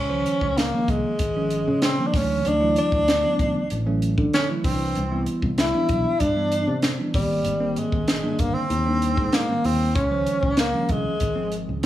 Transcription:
Already playing: fretless electric bass C#2, tenor saxophone C#4
0.09 tine electric piano D#3 F3 G#3 C5
0.26 closed hi-hat
0.41 fretless electric bass C#2, kick
0.58 tenor saxophone A#3, snare, closed hi-hat
0.73 tine electric piano D#3 F3 G#3 A#3
0.88 fretless electric bass C2, tenor saxophone G#3, kick, closed hi-hat
1.19 fretless electric bass G#1, kick, closed hi-hat
1.36 tine electric piano D#3 F3 G#3 C#4
1.50 closed hi-hat
1.67 fretless electric bass C#3
1.82 tenor saxophone C4, snare, closed hi-hat
1.98 tine electric piano D#3 F3 G#3 A#3
2.07 tenor saxophone D4
2.14 fretless electric bass D2, tine electric piano E3 F#3 A3 C#4, tenor saxophone C#4, kick, snare, open hi-hat
2.45 fretless electric bass D2, tenor saxophone D4, closed hi-hat
2.61 tine electric piano E3 F#3 A3 E4
2.76 tenor saxophone D4, closed hi-hat
2.92 fretless electric bass D2, kick
3.08 snare, closed hi-hat
3.23 tine electric piano E3 F#3 A3 B3
3.39 fretless electric bass C#2, kick, closed hi-hat
3.70 fretless electric bass A1, closed hi-hat
3.86 tine electric piano E3 F#3 A3 C#4
4.02 closed hi-hat
4.18 fretless electric bass D3, kick
4.34 tenor saxophone C#4, snare, closed hi-hat
4.49 tine electric piano E3 F#3 A3 E4
4.64 fretless electric bass C2, tine electric piano E3 G3 D4 B4, tenor saxophone C4, kick, open hi-hat
4.95 fretless electric bass C2, closed hi-hat
5.11 tine electric piano E3 G3 B3 E4
5.26 closed hi-hat
5.42 fretless electric bass C2, kick
5.58 tenor saxophone E4, snare, closed hi-hat
5.74 tine electric piano E3 G3 B3 D4
5.89 fretless electric bass B1, kick, closed hi-hat
6.20 fretless electric bass G2, tenor saxophone D4, kick, closed hi-hat
6.36 tine electric piano E3 G3 B3 D4
6.52 closed hi-hat
6.68 fretless electric bass C3
6.82 snare, closed hi-hat
6.99 tine electric piano E3 G3 B3 D4
7.14 fretless electric bass G#1, tine electric piano D#3 G3 A#3 C4, tenor saxophone G3, kick, open hi-hat
7.45 fretless electric bass G#1, closed hi-hat
7.60 tine electric piano D#3 G3 A#3 C4
7.76 tenor saxophone G#3, closed hi-hat
7.92 fretless electric bass G#1, kick
8.08 snare, closed hi-hat
8.23 tine electric piano D#3 G3 A#3 D4
8.39 fretless electric bass G1, tenor saxophone A#3, kick, closed hi-hat
8.54 tenor saxophone C4
8.70 fretless electric bass D#2, closed hi-hat
8.86 tine electric piano D#3 G3 A#3 D4
9.02 closed hi-hat
9.17 fretless electric bass G#2, kick
9.33 tenor saxophone A#3, snare, closed hi-hat
9.49 tine electric piano D#3 G3 A#3 C4
9.64 fretless electric bass D#2, tenor saxophone C4, open hi-hat
9.95 fretless electric bass C#2, tenor saxophone C#4, kick, closed hi-hat
10.11 tine electric piano D#3 F3 G#3 C5
10.26 closed hi-hat
10.43 fretless electric bass C#2, kick
10.57 tenor saxophone A#3, snare, closed hi-hat
10.73 tine electric piano D#3 F3 G#3 C#4
10.89 fretless electric bass C2, tenor saxophone G#3, kick, closed hi-hat
11.20 fretless electric bass G#1, kick, closed hi-hat
11.36 tine electric piano D#3 F3 G#3 C4
11.52 closed hi-hat
11.69 fretless electric bass C#2

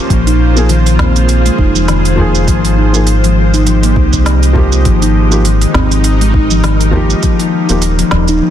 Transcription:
Already playing: synth drone D#3 A#3 C#4 F4 G4 C5
0.10 analog synth bass A#1, steel tongue drum F3, kick, open hi-hat, shaker
0.27 steel tongue drum D#4, open hi-hat, shaker
0.39 synth drone G#4
0.56 felt piano F3 A#3 D#4 G#4, shaker
0.69 steel tongue drum D#3, open hi-hat, shaker
0.86 open hi-hat, shaker
0.99 steel tongue drum C4, snare, udu
1.16 open hi-hat, shaker
1.29 open hi-hat, shaker
1.46 steel tongue drum G#3, open hi-hat, shaker
1.59 analog synth bass F1, steel tongue drum D#4, kick
1.76 steel tongue drum F3, shaker
1.88 steel tongue drum D#3, snare, open hi-hat, shaker
2.05 open hi-hat, shaker
2.16 felt piano F3 A#3 D#4 G#4, udu
2.35 shaker
2.47 analog synth bass G#1, steel tongue drum F3, synth drone G#3, kick, open hi-hat, shaker
2.65 open hi-hat, shaker
2.78 steel tongue drum D#4, synth drone G4
2.93 felt piano F3 A#3 D#4 G#4, shaker
3.07 open hi-hat, shaker
3.21 steel tongue drum F3, synth drone D#5, open hi-hat, shaker
3.54 steel tongue drum D#4, open hi-hat, shaker
3.67 steel tongue drum F3, open hi-hat, shaker
3.83 steel tongue drum A#3, open hi-hat, shaker
3.96 analog synth bass C2, kick
4.13 kick, shaker
4.26 snare, open hi-hat, shaker
4.43 open hi-hat, shaker
4.53 felt piano F3 A#3 D#4, kick, udu
4.57 felt piano G4
4.72 shaker
4.85 analog synth bass G#1, steel tongue drum F3, kick, open hi-hat, shaker
4.94 synth drone D#4
5.02 steel tongue drum D#4, open hi-hat, shaker
5.31 felt piano F3 A#3 D#4 G4, shaker
5.45 steel tongue drum D#3, open hi-hat, shaker
5.62 open hi-hat, shaker
5.68 synth drone A#4
5.74 analog synth bass G#1, steel tongue drum C4, snare, udu
5.92 open hi-hat, shaker
6.04 open hi-hat, shaker
6.21 steel tongue drum G#3, open hi-hat, shaker
6.34 steel tongue drum D#4, kick
6.51 steel tongue drum F3, shaker
6.63 steel tongue drum D#3, snare, open hi-hat, shaker
6.81 open hi-hat, shaker
6.91 felt piano F3 A#3 D#4, udu
6.96 felt piano G4
7.10 shaker
7.23 synth drone D#3, steel tongue drum F3, kick, open hi-hat, shaker
7.40 synth drone A#3 F4, open hi-hat, shaker
7.53 steel tongue drum D#4
7.58 synth drone C#4
7.69 analog synth bass D#1, felt piano F3 A#3 D#4 G4, open hi-hat, shaker
7.82 open hi-hat, shaker
7.99 steel tongue drum F3, open hi-hat, shaker
8.11 analog synth bass D#1, snare, udu
8.28 steel tongue drum D#4, open hi-hat, shaker
8.42 steel tongue drum F3

